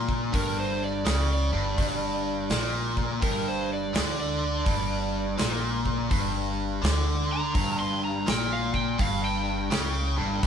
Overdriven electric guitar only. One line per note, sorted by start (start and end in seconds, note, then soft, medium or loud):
0.00 0.32 A#2 loud
0.33 1.04 G2 loud
1.05 1.51 C#3 medium
1.52 1.77 G2 loud
1.78 2.49 G2 medium
2.51 3.22 A#2 loud
3.21 3.93 G2 medium
3.94 4.66 D3 loud
4.65 5.37 G2 loud
5.38 6.10 A#2 loud
6.09 6.81 G2 medium
6.82 7.54 D3 loud
7.54 8.26 G2 loud
8.26 8.98 A#2 loud
8.98 9.70 G2 loud
9.71 10.16 C#3 loud
10.17 10.42 G2 medium
10.43 10.47 G2 loud